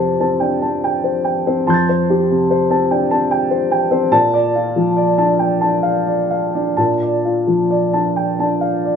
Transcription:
Already playing: F2 C3 G4 C5 A5
0.20 C4 A5
0.40 D4 G5
0.62 C4 A5
0.84 G5
1.04 C5
1.24 G5
1.47 C4 C5
1.67 F2 A5 C6 G6
1.74 A6
1.89 C5
2.10 G4
2.31 C3
2.51 C5
2.70 C4 A5
2.91 D4 G5
3.11 C4 A5
3.31 G5
3.51 C5
3.71 G5
3.91 C4 C5
4.12 A#2 A5
4.34 D5
4.55 F4
4.76 F3
4.97 D5
5.18 D4 A5
5.39 G5
5.61 D4 A5
5.83 F5
6.07 D5
6.30 F5
6.55 D4 D5
6.77 A#2 A5
7.03 D5
7.25 F4
7.47 F3
7.71 D5
7.93 D4 A5
8.16 G5
8.39 D4 A5
8.61 F5
8.85 D5

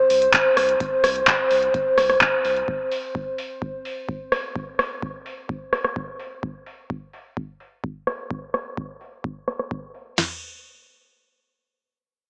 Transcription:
Already playing: C5
0.10 C2, open hi-hat
0.22 closed hi-hat
0.34 kick, clap, closed hi-hat
0.57 C2, cross-stick, open hi-hat
0.69 closed hi-hat
0.80 kick, closed hi-hat
1.04 C2, cross-stick, open hi-hat
1.16 closed hi-hat
1.27 kick, clap, closed hi-hat
1.51 C2, open hi-hat
1.63 closed hi-hat
1.74 kick, closed hi-hat
1.98 C2, cross-stick, open hi-hat
2.10 cross-stick, open hi-hat
2.21 kick, clap, closed hi-hat
2.45 C2, open hi-hat
2.56 closed hi-hat
2.68 kick
2.92 open hi-hat
3.15 kick
3.38 open hi-hat
3.62 kick
3.85 open hi-hat
4.09 kick
4.32 cross-stick, open hi-hat
4.56 kick
4.79 cross-stick, open hi-hat
5.02 kick
5.26 open hi-hat
5.49 kick
5.73 cross-stick, open hi-hat
5.85 cross-stick, open hi-hat
5.96 kick
6.20 open hi-hat
6.43 kick
6.66 open hi-hat
6.90 kick
7.13 open hi-hat
7.37 kick
7.60 open hi-hat
7.84 kick
8.07 cross-stick, open hi-hat
8.31 kick
8.54 cross-stick, open hi-hat
8.77 kick
9.01 open hi-hat
9.24 kick
9.48 cross-stick, open hi-hat
9.59 cross-stick, open hi-hat
9.71 kick
9.95 open hi-hat
10.18 snare, floor tom, crash

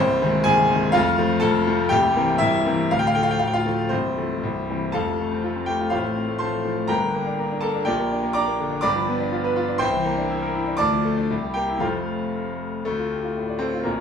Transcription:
Already playing: C1 C2 C4 C5
0.22 D#3 G#3 C4
0.44 C1 C2 G#4 G#5
0.71 D#3 G#3 C4
0.92 F1 F2 F4 F5
1.18 F3 A3 C4
1.40 F1 F2 A4 A5
1.67 F3 A3 C4
1.89 C1 C2 G4 G5
2.16 E3 A#3 C4
2.38 C1 C2 E4 E5
2.66 E3 A#3 C4
2.91 D1 D2 F5
2.99 G5
3.07 F5
3.15 F3 A3 G5
3.23 F5
3.31 G5
3.39 D1 D2 F5
3.47 G5
3.53 F4 F5
3.66 F3 A3
3.89 C1 C2 C4 C5
4.18 F3 A3 C4
4.43 C1 C2
4.69 E3 G3 C4
4.92 F1 F2 A4 F5 A5
5.07 F3
5.20 A3
5.32 C4
5.44 F4
5.56 C4
5.66 A3 G4 G5
5.80 F4
5.90 A1 A2 F4 C5 F5
6.04 A3
6.17 C4
6.28 A3
6.38 F3 C5 A5 C6
6.53 A3
6.65 F3
6.78 A3
6.87 G1 G2 A#4 G5 A#5
7.02 D3
7.14 A#3
7.26 D4
7.39 A#3
7.51 D4
7.61 A#3 A4 A5
7.75 D4
7.85 A#1 A#2 G4 D5 G5
7.99 A#3
8.12 D4
8.23 A#3
8.33 D4 D5 A#5 D6
8.47 A#3
8.60 D3
8.71 D4
8.81 G1 G2 D5 B5 D6
8.96 F3
9.08 B3
9.20 D4
9.32 F4
9.44 B4
9.56 F4
9.68 D4
9.78 C2 C5 G5 C6
9.93 E3
10.05 A#3
10.17 D4
10.30 E4
10.42 A#4
10.54 E4
10.67 D4
10.77 D2 D5 A5 D6
10.93 F3
11.05 A3
11.17 D4
11.30 C2
11.43 G3
11.54 A#3 G4 G5
11.69 E4
11.77 F2 F3 A3 C4 F4 C5 F5
11.81 F1
12.85 D2 A3
13.00 F4
13.12 G4
13.24 F4
13.37 A2
13.49 D5
13.59 C4 A4
13.73 F4
13.83 A#1 A#2 A#3

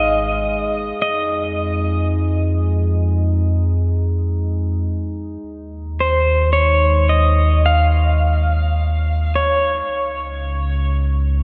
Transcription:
Already playing: G#1 G#3 D#4 D#5
0.99 F2 D#5
5.44 D#2
6.00 C5
6.53 C#5
7.09 D#5
7.66 F5
9.36 C#5
9.88 C#2

